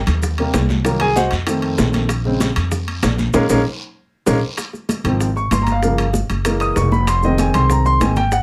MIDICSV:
0, 0, Header, 1, 4, 480
1, 0, Start_track
1, 0, Key_signature, -5, "minor"
1, 0, Tempo, 311203
1, 1311, Time_signature, 4, 2, 24, 8
1, 7067, Key_signature, -5, "major"
1, 12998, End_track
2, 0, Start_track
2, 0, Title_t, "Grand piano"
2, 0, Program_c, 0, 0
2, 606, Note_on_c, 0, 55, 42
2, 607, Note_on_c, 0, 48, 49
2, 614, Note_on_c, 0, 58, 53
2, 815, Note_off_c, 0, 48, 0
2, 815, Note_off_c, 0, 55, 0
2, 819, Note_off_c, 0, 58, 0
2, 1311, Note_on_c, 0, 51, 51
2, 1317, Note_on_c, 0, 54, 51
2, 1325, Note_on_c, 0, 58, 59
2, 1561, Note_on_c, 0, 68, 79
2, 1561, Note_on_c, 0, 80, 101
2, 1630, Note_off_c, 0, 51, 0
2, 1633, Note_off_c, 0, 54, 0
2, 1637, Note_off_c, 0, 58, 0
2, 1788, Note_off_c, 0, 68, 0
2, 1788, Note_off_c, 0, 80, 0
2, 1792, Note_on_c, 0, 75, 59
2, 1793, Note_on_c, 0, 66, 59
2, 1793, Note_on_c, 0, 78, 73
2, 1801, Note_on_c, 0, 72, 63
2, 2024, Note_off_c, 0, 66, 0
2, 2024, Note_off_c, 0, 75, 0
2, 2024, Note_off_c, 0, 78, 0
2, 2029, Note_off_c, 0, 72, 0
2, 2263, Note_on_c, 0, 51, 55
2, 2272, Note_on_c, 0, 57, 51
2, 2281, Note_on_c, 0, 60, 54
2, 3178, Note_off_c, 0, 51, 0
2, 3183, Note_off_c, 0, 57, 0
2, 3187, Note_off_c, 0, 60, 0
2, 3477, Note_on_c, 0, 49, 56
2, 3480, Note_on_c, 0, 56, 52
2, 3494, Note_on_c, 0, 60, 59
2, 3792, Note_off_c, 0, 49, 0
2, 3794, Note_off_c, 0, 56, 0
2, 3801, Note_off_c, 0, 60, 0
2, 5150, Note_on_c, 0, 56, 99
2, 5151, Note_on_c, 0, 61, 90
2, 5156, Note_on_c, 0, 58, 96
2, 5303, Note_off_c, 0, 56, 0
2, 5303, Note_off_c, 0, 61, 0
2, 5306, Note_off_c, 0, 58, 0
2, 5402, Note_on_c, 0, 58, 99
2, 5403, Note_on_c, 0, 56, 95
2, 5409, Note_on_c, 0, 61, 96
2, 5550, Note_off_c, 0, 56, 0
2, 5550, Note_off_c, 0, 58, 0
2, 5554, Note_off_c, 0, 61, 0
2, 6589, Note_on_c, 0, 58, 90
2, 6590, Note_on_c, 0, 56, 96
2, 6590, Note_on_c, 0, 61, 91
2, 6742, Note_off_c, 0, 58, 0
2, 6742, Note_off_c, 0, 61, 0
2, 6743, Note_off_c, 0, 56, 0
2, 7793, Note_on_c, 0, 51, 54
2, 7801, Note_on_c, 0, 53, 49
2, 7809, Note_on_c, 0, 60, 60
2, 8110, Note_off_c, 0, 51, 0
2, 8114, Note_off_c, 0, 53, 0
2, 8118, Note_off_c, 0, 60, 0
2, 8277, Note_on_c, 0, 85, 88
2, 8506, Note_off_c, 0, 85, 0
2, 8521, Note_on_c, 0, 84, 82
2, 8665, Note_on_c, 0, 82, 79
2, 8670, Note_off_c, 0, 84, 0
2, 8822, Note_off_c, 0, 82, 0
2, 8822, Note_on_c, 0, 77, 78
2, 8984, Note_on_c, 0, 49, 54
2, 9002, Note_on_c, 0, 53, 45
2, 9007, Note_on_c, 0, 58, 60
2, 9305, Note_off_c, 0, 49, 0
2, 9315, Note_off_c, 0, 53, 0
2, 9317, Note_off_c, 0, 58, 0
2, 9495, Note_off_c, 0, 77, 0
2, 9944, Note_on_c, 0, 52, 52
2, 9950, Note_on_c, 0, 56, 49
2, 9963, Note_on_c, 0, 58, 58
2, 10199, Note_on_c, 0, 87, 98
2, 10427, Note_off_c, 0, 87, 0
2, 10443, Note_on_c, 0, 85, 82
2, 10631, Note_off_c, 0, 52, 0
2, 10634, Note_off_c, 0, 56, 0
2, 10641, Note_off_c, 0, 58, 0
2, 10669, Note_off_c, 0, 85, 0
2, 10677, Note_on_c, 0, 83, 88
2, 10906, Note_off_c, 0, 83, 0
2, 10931, Note_on_c, 0, 84, 92
2, 11153, Note_off_c, 0, 84, 0
2, 11171, Note_on_c, 0, 56, 51
2, 11172, Note_on_c, 0, 51, 56
2, 11175, Note_on_c, 0, 75, 83
2, 11182, Note_on_c, 0, 60, 63
2, 11396, Note_off_c, 0, 75, 0
2, 11413, Note_on_c, 0, 80, 70
2, 11635, Note_off_c, 0, 80, 0
2, 11643, Note_on_c, 0, 84, 101
2, 11870, Note_off_c, 0, 84, 0
2, 11888, Note_on_c, 0, 82, 79
2, 12112, Note_off_c, 0, 82, 0
2, 12121, Note_on_c, 0, 84, 110
2, 12330, Note_off_c, 0, 51, 0
2, 12346, Note_off_c, 0, 56, 0
2, 12348, Note_off_c, 0, 84, 0
2, 12350, Note_off_c, 0, 60, 0
2, 12353, Note_on_c, 0, 51, 48
2, 12364, Note_on_c, 0, 80, 72
2, 12370, Note_on_c, 0, 56, 43
2, 12373, Note_on_c, 0, 60, 50
2, 12568, Note_off_c, 0, 51, 0
2, 12577, Note_off_c, 0, 56, 0
2, 12579, Note_off_c, 0, 60, 0
2, 12590, Note_off_c, 0, 80, 0
2, 12600, Note_on_c, 0, 79, 95
2, 12828, Note_off_c, 0, 79, 0
2, 12840, Note_on_c, 0, 78, 87
2, 12981, Note_off_c, 0, 78, 0
2, 12998, End_track
3, 0, Start_track
3, 0, Title_t, "Upright bass"
3, 0, Program_c, 1, 32
3, 113, Note_on_c, 1, 39, 94
3, 782, Note_off_c, 1, 39, 0
3, 829, Note_on_c, 1, 36, 92
3, 1944, Note_off_c, 1, 36, 0
3, 2034, Note_on_c, 1, 41, 93
3, 2702, Note_off_c, 1, 41, 0
3, 2752, Note_on_c, 1, 34, 91
3, 3865, Note_off_c, 1, 34, 0
3, 3956, Note_on_c, 1, 41, 94
3, 4622, Note_off_c, 1, 41, 0
3, 4676, Note_on_c, 1, 34, 90
3, 5119, Note_off_c, 1, 34, 0
3, 5154, Note_on_c, 1, 34, 94
3, 5330, Note_off_c, 1, 34, 0
3, 5395, Note_on_c, 1, 34, 96
3, 5570, Note_off_c, 1, 34, 0
3, 6593, Note_on_c, 1, 34, 104
3, 6769, Note_off_c, 1, 34, 0
3, 7777, Note_on_c, 1, 32, 94
3, 8452, Note_off_c, 1, 32, 0
3, 8499, Note_on_c, 1, 31, 87
3, 9618, Note_off_c, 1, 31, 0
3, 9712, Note_on_c, 1, 30, 92
3, 10380, Note_off_c, 1, 30, 0
3, 10440, Note_on_c, 1, 29, 93
3, 11550, Note_off_c, 1, 29, 0
3, 11634, Note_on_c, 1, 36, 90
3, 12302, Note_off_c, 1, 36, 0
3, 12348, Note_on_c, 1, 32, 90
3, 12998, Note_off_c, 1, 32, 0
3, 12998, End_track
4, 0, Start_track
4, 0, Title_t, "Drums"
4, 93, Note_on_c, 9, 73, 64
4, 106, Note_on_c, 9, 63, 32
4, 106, Note_on_c, 9, 64, 82
4, 109, Note_on_c, 9, 65, 94
4, 116, Note_on_c, 9, 60, 33
4, 118, Note_on_c, 9, 70, 28
4, 247, Note_off_c, 9, 73, 0
4, 260, Note_off_c, 9, 63, 0
4, 260, Note_off_c, 9, 64, 0
4, 263, Note_off_c, 9, 65, 0
4, 271, Note_off_c, 9, 60, 0
4, 273, Note_off_c, 9, 70, 0
4, 334, Note_on_c, 9, 74, 64
4, 345, Note_on_c, 9, 63, 32
4, 345, Note_on_c, 9, 64, 71
4, 348, Note_on_c, 9, 70, 73
4, 361, Note_on_c, 9, 60, 63
4, 488, Note_off_c, 9, 74, 0
4, 499, Note_off_c, 9, 63, 0
4, 499, Note_off_c, 9, 64, 0
4, 503, Note_off_c, 9, 70, 0
4, 515, Note_off_c, 9, 60, 0
4, 587, Note_on_c, 9, 65, 69
4, 598, Note_on_c, 9, 63, 33
4, 741, Note_off_c, 9, 65, 0
4, 752, Note_off_c, 9, 63, 0
4, 826, Note_on_c, 9, 73, 67
4, 828, Note_on_c, 9, 65, 86
4, 828, Note_on_c, 9, 66, 77
4, 830, Note_on_c, 9, 60, 67
4, 830, Note_on_c, 9, 61, 79
4, 835, Note_on_c, 9, 70, 64
4, 836, Note_on_c, 9, 63, 81
4, 980, Note_off_c, 9, 73, 0
4, 983, Note_off_c, 9, 65, 0
4, 983, Note_off_c, 9, 66, 0
4, 984, Note_off_c, 9, 60, 0
4, 984, Note_off_c, 9, 61, 0
4, 989, Note_off_c, 9, 70, 0
4, 990, Note_off_c, 9, 63, 0
4, 1063, Note_on_c, 9, 73, 63
4, 1069, Note_on_c, 9, 60, 31
4, 1082, Note_on_c, 9, 70, 26
4, 1085, Note_on_c, 9, 63, 79
4, 1217, Note_off_c, 9, 73, 0
4, 1223, Note_off_c, 9, 60, 0
4, 1236, Note_off_c, 9, 70, 0
4, 1239, Note_off_c, 9, 63, 0
4, 1305, Note_on_c, 9, 65, 65
4, 1306, Note_on_c, 9, 74, 70
4, 1307, Note_on_c, 9, 60, 67
4, 1324, Note_on_c, 9, 70, 66
4, 1460, Note_off_c, 9, 65, 0
4, 1460, Note_off_c, 9, 74, 0
4, 1461, Note_off_c, 9, 60, 0
4, 1478, Note_off_c, 9, 70, 0
4, 1539, Note_on_c, 9, 65, 88
4, 1552, Note_on_c, 9, 60, 32
4, 1571, Note_on_c, 9, 63, 34
4, 1693, Note_off_c, 9, 65, 0
4, 1706, Note_off_c, 9, 60, 0
4, 1725, Note_off_c, 9, 63, 0
4, 1786, Note_on_c, 9, 66, 59
4, 1789, Note_on_c, 9, 60, 60
4, 1793, Note_on_c, 9, 73, 65
4, 1800, Note_on_c, 9, 70, 73
4, 1804, Note_on_c, 9, 63, 86
4, 1940, Note_off_c, 9, 66, 0
4, 1944, Note_off_c, 9, 60, 0
4, 1947, Note_off_c, 9, 73, 0
4, 1955, Note_off_c, 9, 70, 0
4, 1958, Note_off_c, 9, 63, 0
4, 2016, Note_on_c, 9, 65, 71
4, 2024, Note_on_c, 9, 60, 36
4, 2038, Note_on_c, 9, 63, 31
4, 2038, Note_on_c, 9, 73, 64
4, 2043, Note_on_c, 9, 70, 29
4, 2170, Note_off_c, 9, 65, 0
4, 2178, Note_off_c, 9, 60, 0
4, 2192, Note_off_c, 9, 73, 0
4, 2193, Note_off_c, 9, 63, 0
4, 2197, Note_off_c, 9, 70, 0
4, 2261, Note_on_c, 9, 65, 94
4, 2270, Note_on_c, 9, 60, 63
4, 2282, Note_on_c, 9, 63, 35
4, 2282, Note_on_c, 9, 74, 61
4, 2288, Note_on_c, 9, 70, 71
4, 2416, Note_off_c, 9, 65, 0
4, 2425, Note_off_c, 9, 60, 0
4, 2436, Note_off_c, 9, 63, 0
4, 2436, Note_off_c, 9, 74, 0
4, 2442, Note_off_c, 9, 70, 0
4, 2503, Note_on_c, 9, 65, 65
4, 2510, Note_on_c, 9, 63, 34
4, 2658, Note_off_c, 9, 65, 0
4, 2664, Note_off_c, 9, 63, 0
4, 2747, Note_on_c, 9, 70, 69
4, 2748, Note_on_c, 9, 66, 82
4, 2750, Note_on_c, 9, 60, 70
4, 2750, Note_on_c, 9, 61, 82
4, 2750, Note_on_c, 9, 63, 82
4, 2755, Note_on_c, 9, 73, 66
4, 2902, Note_off_c, 9, 66, 0
4, 2902, Note_off_c, 9, 70, 0
4, 2904, Note_off_c, 9, 60, 0
4, 2904, Note_off_c, 9, 61, 0
4, 2904, Note_off_c, 9, 63, 0
4, 2909, Note_off_c, 9, 73, 0
4, 2979, Note_on_c, 9, 70, 29
4, 2981, Note_on_c, 9, 60, 32
4, 2993, Note_on_c, 9, 65, 63
4, 2997, Note_on_c, 9, 63, 79
4, 3000, Note_on_c, 9, 73, 73
4, 3133, Note_off_c, 9, 70, 0
4, 3135, Note_off_c, 9, 60, 0
4, 3148, Note_off_c, 9, 65, 0
4, 3151, Note_off_c, 9, 63, 0
4, 3155, Note_off_c, 9, 73, 0
4, 3224, Note_on_c, 9, 60, 71
4, 3227, Note_on_c, 9, 65, 91
4, 3236, Note_on_c, 9, 70, 70
4, 3239, Note_on_c, 9, 74, 67
4, 3241, Note_on_c, 9, 63, 33
4, 3378, Note_off_c, 9, 60, 0
4, 3381, Note_off_c, 9, 65, 0
4, 3391, Note_off_c, 9, 70, 0
4, 3393, Note_off_c, 9, 74, 0
4, 3395, Note_off_c, 9, 63, 0
4, 3472, Note_on_c, 9, 60, 34
4, 3475, Note_on_c, 9, 63, 30
4, 3626, Note_off_c, 9, 60, 0
4, 3630, Note_off_c, 9, 63, 0
4, 3708, Note_on_c, 9, 63, 91
4, 3709, Note_on_c, 9, 73, 69
4, 3713, Note_on_c, 9, 70, 74
4, 3715, Note_on_c, 9, 60, 62
4, 3716, Note_on_c, 9, 65, 69
4, 3716, Note_on_c, 9, 66, 59
4, 3862, Note_off_c, 9, 63, 0
4, 3863, Note_off_c, 9, 73, 0
4, 3867, Note_off_c, 9, 70, 0
4, 3869, Note_off_c, 9, 60, 0
4, 3870, Note_off_c, 9, 65, 0
4, 3870, Note_off_c, 9, 66, 0
4, 3948, Note_on_c, 9, 73, 64
4, 3951, Note_on_c, 9, 63, 31
4, 3951, Note_on_c, 9, 64, 79
4, 3951, Note_on_c, 9, 65, 97
4, 3952, Note_on_c, 9, 60, 34
4, 3963, Note_on_c, 9, 70, 30
4, 4103, Note_off_c, 9, 73, 0
4, 4105, Note_off_c, 9, 63, 0
4, 4105, Note_off_c, 9, 64, 0
4, 4105, Note_off_c, 9, 65, 0
4, 4106, Note_off_c, 9, 60, 0
4, 4117, Note_off_c, 9, 70, 0
4, 4189, Note_on_c, 9, 60, 67
4, 4189, Note_on_c, 9, 70, 69
4, 4189, Note_on_c, 9, 74, 71
4, 4195, Note_on_c, 9, 63, 33
4, 4195, Note_on_c, 9, 64, 70
4, 4343, Note_off_c, 9, 60, 0
4, 4343, Note_off_c, 9, 74, 0
4, 4344, Note_off_c, 9, 70, 0
4, 4349, Note_off_c, 9, 63, 0
4, 4349, Note_off_c, 9, 64, 0
4, 4434, Note_on_c, 9, 63, 33
4, 4440, Note_on_c, 9, 65, 67
4, 4588, Note_off_c, 9, 63, 0
4, 4595, Note_off_c, 9, 65, 0
4, 4667, Note_on_c, 9, 63, 79
4, 4671, Note_on_c, 9, 60, 69
4, 4671, Note_on_c, 9, 61, 81
4, 4672, Note_on_c, 9, 70, 70
4, 4675, Note_on_c, 9, 65, 91
4, 4675, Note_on_c, 9, 66, 81
4, 4676, Note_on_c, 9, 73, 66
4, 4821, Note_off_c, 9, 63, 0
4, 4825, Note_off_c, 9, 60, 0
4, 4825, Note_off_c, 9, 61, 0
4, 4826, Note_off_c, 9, 70, 0
4, 4829, Note_off_c, 9, 65, 0
4, 4829, Note_off_c, 9, 66, 0
4, 4830, Note_off_c, 9, 73, 0
4, 4908, Note_on_c, 9, 60, 32
4, 4910, Note_on_c, 9, 73, 73
4, 4914, Note_on_c, 9, 70, 28
4, 4919, Note_on_c, 9, 63, 84
4, 5062, Note_off_c, 9, 60, 0
4, 5065, Note_off_c, 9, 73, 0
4, 5068, Note_off_c, 9, 70, 0
4, 5073, Note_off_c, 9, 63, 0
4, 5143, Note_on_c, 9, 70, 98
4, 5146, Note_on_c, 9, 60, 104
4, 5149, Note_on_c, 9, 65, 100
4, 5154, Note_on_c, 9, 74, 98
4, 5161, Note_on_c, 9, 64, 89
4, 5297, Note_off_c, 9, 70, 0
4, 5300, Note_off_c, 9, 60, 0
4, 5303, Note_off_c, 9, 65, 0
4, 5308, Note_off_c, 9, 74, 0
4, 5316, Note_off_c, 9, 64, 0
4, 5389, Note_on_c, 9, 60, 91
4, 5389, Note_on_c, 9, 70, 102
4, 5391, Note_on_c, 9, 64, 95
4, 5392, Note_on_c, 9, 65, 92
4, 5396, Note_on_c, 9, 74, 96
4, 5543, Note_off_c, 9, 60, 0
4, 5543, Note_off_c, 9, 70, 0
4, 5545, Note_off_c, 9, 64, 0
4, 5546, Note_off_c, 9, 65, 0
4, 5550, Note_off_c, 9, 74, 0
4, 6576, Note_on_c, 9, 60, 99
4, 6583, Note_on_c, 9, 65, 91
4, 6586, Note_on_c, 9, 70, 100
4, 6588, Note_on_c, 9, 74, 91
4, 6591, Note_on_c, 9, 64, 97
4, 6730, Note_off_c, 9, 60, 0
4, 6737, Note_off_c, 9, 65, 0
4, 6740, Note_off_c, 9, 70, 0
4, 6742, Note_off_c, 9, 74, 0
4, 6745, Note_off_c, 9, 64, 0
4, 7055, Note_on_c, 9, 65, 79
4, 7062, Note_on_c, 9, 60, 70
4, 7064, Note_on_c, 9, 70, 70
4, 7074, Note_on_c, 9, 63, 32
4, 7210, Note_off_c, 9, 65, 0
4, 7216, Note_off_c, 9, 60, 0
4, 7218, Note_off_c, 9, 70, 0
4, 7228, Note_off_c, 9, 63, 0
4, 7300, Note_on_c, 9, 60, 33
4, 7310, Note_on_c, 9, 63, 33
4, 7325, Note_on_c, 9, 70, 31
4, 7455, Note_off_c, 9, 60, 0
4, 7464, Note_off_c, 9, 63, 0
4, 7479, Note_off_c, 9, 70, 0
4, 7540, Note_on_c, 9, 60, 58
4, 7544, Note_on_c, 9, 63, 92
4, 7551, Note_on_c, 9, 65, 70
4, 7561, Note_on_c, 9, 70, 74
4, 7694, Note_off_c, 9, 60, 0
4, 7698, Note_off_c, 9, 63, 0
4, 7705, Note_off_c, 9, 65, 0
4, 7715, Note_off_c, 9, 70, 0
4, 7786, Note_on_c, 9, 65, 89
4, 7788, Note_on_c, 9, 63, 32
4, 7788, Note_on_c, 9, 64, 76
4, 7792, Note_on_c, 9, 70, 29
4, 7940, Note_off_c, 9, 65, 0
4, 7943, Note_off_c, 9, 63, 0
4, 7943, Note_off_c, 9, 64, 0
4, 7946, Note_off_c, 9, 70, 0
4, 8020, Note_on_c, 9, 63, 34
4, 8029, Note_on_c, 9, 60, 65
4, 8030, Note_on_c, 9, 70, 67
4, 8174, Note_off_c, 9, 63, 0
4, 8183, Note_off_c, 9, 60, 0
4, 8184, Note_off_c, 9, 70, 0
4, 8262, Note_on_c, 9, 63, 35
4, 8269, Note_on_c, 9, 60, 32
4, 8284, Note_on_c, 9, 70, 28
4, 8416, Note_off_c, 9, 63, 0
4, 8423, Note_off_c, 9, 60, 0
4, 8438, Note_off_c, 9, 70, 0
4, 8501, Note_on_c, 9, 65, 83
4, 8506, Note_on_c, 9, 63, 82
4, 8515, Note_on_c, 9, 60, 68
4, 8515, Note_on_c, 9, 61, 82
4, 8516, Note_on_c, 9, 70, 70
4, 8655, Note_off_c, 9, 65, 0
4, 8660, Note_off_c, 9, 63, 0
4, 8669, Note_off_c, 9, 60, 0
4, 8669, Note_off_c, 9, 61, 0
4, 8670, Note_off_c, 9, 70, 0
4, 8740, Note_on_c, 9, 65, 63
4, 8746, Note_on_c, 9, 60, 31
4, 8751, Note_on_c, 9, 63, 82
4, 8756, Note_on_c, 9, 70, 28
4, 8895, Note_off_c, 9, 65, 0
4, 8900, Note_off_c, 9, 60, 0
4, 8905, Note_off_c, 9, 63, 0
4, 8910, Note_off_c, 9, 70, 0
4, 8986, Note_on_c, 9, 60, 65
4, 8989, Note_on_c, 9, 63, 33
4, 8992, Note_on_c, 9, 70, 68
4, 9140, Note_off_c, 9, 60, 0
4, 9143, Note_off_c, 9, 63, 0
4, 9146, Note_off_c, 9, 70, 0
4, 9223, Note_on_c, 9, 60, 34
4, 9229, Note_on_c, 9, 63, 34
4, 9229, Note_on_c, 9, 65, 91
4, 9246, Note_on_c, 9, 70, 32
4, 9377, Note_off_c, 9, 60, 0
4, 9384, Note_off_c, 9, 63, 0
4, 9384, Note_off_c, 9, 65, 0
4, 9400, Note_off_c, 9, 70, 0
4, 9461, Note_on_c, 9, 60, 61
4, 9468, Note_on_c, 9, 63, 87
4, 9480, Note_on_c, 9, 70, 72
4, 9615, Note_off_c, 9, 60, 0
4, 9622, Note_off_c, 9, 63, 0
4, 9635, Note_off_c, 9, 70, 0
4, 9709, Note_on_c, 9, 63, 33
4, 9711, Note_on_c, 9, 65, 70
4, 9712, Note_on_c, 9, 60, 35
4, 9716, Note_on_c, 9, 70, 30
4, 9863, Note_off_c, 9, 63, 0
4, 9865, Note_off_c, 9, 65, 0
4, 9866, Note_off_c, 9, 60, 0
4, 9870, Note_off_c, 9, 70, 0
4, 9946, Note_on_c, 9, 63, 34
4, 9946, Note_on_c, 9, 65, 95
4, 9948, Note_on_c, 9, 60, 65
4, 9953, Note_on_c, 9, 70, 73
4, 10100, Note_off_c, 9, 63, 0
4, 10100, Note_off_c, 9, 65, 0
4, 10102, Note_off_c, 9, 60, 0
4, 10107, Note_off_c, 9, 70, 0
4, 10182, Note_on_c, 9, 65, 68
4, 10191, Note_on_c, 9, 63, 33
4, 10203, Note_on_c, 9, 70, 28
4, 10336, Note_off_c, 9, 65, 0
4, 10345, Note_off_c, 9, 63, 0
4, 10357, Note_off_c, 9, 70, 0
4, 10425, Note_on_c, 9, 63, 32
4, 10427, Note_on_c, 9, 60, 64
4, 10427, Note_on_c, 9, 61, 79
4, 10434, Note_on_c, 9, 66, 65
4, 10434, Note_on_c, 9, 70, 68
4, 10579, Note_off_c, 9, 63, 0
4, 10581, Note_off_c, 9, 60, 0
4, 10581, Note_off_c, 9, 61, 0
4, 10588, Note_off_c, 9, 66, 0
4, 10588, Note_off_c, 9, 70, 0
4, 10666, Note_on_c, 9, 60, 34
4, 10671, Note_on_c, 9, 63, 81
4, 10691, Note_on_c, 9, 70, 28
4, 10821, Note_off_c, 9, 60, 0
4, 10825, Note_off_c, 9, 63, 0
4, 10845, Note_off_c, 9, 70, 0
4, 10910, Note_on_c, 9, 60, 71
4, 10910, Note_on_c, 9, 63, 33
4, 10916, Note_on_c, 9, 70, 67
4, 10919, Note_on_c, 9, 65, 91
4, 11064, Note_off_c, 9, 60, 0
4, 11064, Note_off_c, 9, 63, 0
4, 11070, Note_off_c, 9, 70, 0
4, 11073, Note_off_c, 9, 65, 0
4, 11143, Note_on_c, 9, 60, 33
4, 11151, Note_on_c, 9, 70, 30
4, 11152, Note_on_c, 9, 63, 32
4, 11297, Note_off_c, 9, 60, 0
4, 11305, Note_off_c, 9, 70, 0
4, 11307, Note_off_c, 9, 63, 0
4, 11387, Note_on_c, 9, 60, 60
4, 11388, Note_on_c, 9, 63, 90
4, 11391, Note_on_c, 9, 70, 69
4, 11404, Note_on_c, 9, 65, 65
4, 11541, Note_off_c, 9, 60, 0
4, 11542, Note_off_c, 9, 63, 0
4, 11546, Note_off_c, 9, 70, 0
4, 11558, Note_off_c, 9, 65, 0
4, 11632, Note_on_c, 9, 63, 33
4, 11632, Note_on_c, 9, 64, 76
4, 11632, Note_on_c, 9, 65, 92
4, 11639, Note_on_c, 9, 70, 28
4, 11786, Note_off_c, 9, 63, 0
4, 11786, Note_off_c, 9, 64, 0
4, 11786, Note_off_c, 9, 65, 0
4, 11794, Note_off_c, 9, 70, 0
4, 11870, Note_on_c, 9, 60, 65
4, 11878, Note_on_c, 9, 63, 34
4, 11878, Note_on_c, 9, 64, 70
4, 11881, Note_on_c, 9, 70, 72
4, 12024, Note_off_c, 9, 60, 0
4, 12033, Note_off_c, 9, 63, 0
4, 12033, Note_off_c, 9, 64, 0
4, 12035, Note_off_c, 9, 70, 0
4, 12114, Note_on_c, 9, 60, 29
4, 12118, Note_on_c, 9, 70, 29
4, 12124, Note_on_c, 9, 63, 32
4, 12268, Note_off_c, 9, 60, 0
4, 12272, Note_off_c, 9, 70, 0
4, 12278, Note_off_c, 9, 63, 0
4, 12350, Note_on_c, 9, 63, 77
4, 12355, Note_on_c, 9, 70, 67
4, 12357, Note_on_c, 9, 60, 65
4, 12357, Note_on_c, 9, 61, 79
4, 12358, Note_on_c, 9, 65, 85
4, 12504, Note_off_c, 9, 63, 0
4, 12509, Note_off_c, 9, 70, 0
4, 12511, Note_off_c, 9, 60, 0
4, 12511, Note_off_c, 9, 61, 0
4, 12512, Note_off_c, 9, 65, 0
4, 12586, Note_on_c, 9, 70, 26
4, 12592, Note_on_c, 9, 63, 85
4, 12594, Note_on_c, 9, 60, 33
4, 12599, Note_on_c, 9, 65, 60
4, 12740, Note_off_c, 9, 70, 0
4, 12747, Note_off_c, 9, 63, 0
4, 12748, Note_off_c, 9, 60, 0
4, 12753, Note_off_c, 9, 65, 0
4, 12828, Note_on_c, 9, 70, 68
4, 12829, Note_on_c, 9, 63, 32
4, 12831, Note_on_c, 9, 60, 73
4, 12982, Note_off_c, 9, 70, 0
4, 12983, Note_off_c, 9, 63, 0
4, 12985, Note_off_c, 9, 60, 0
4, 12998, End_track
0, 0, End_of_file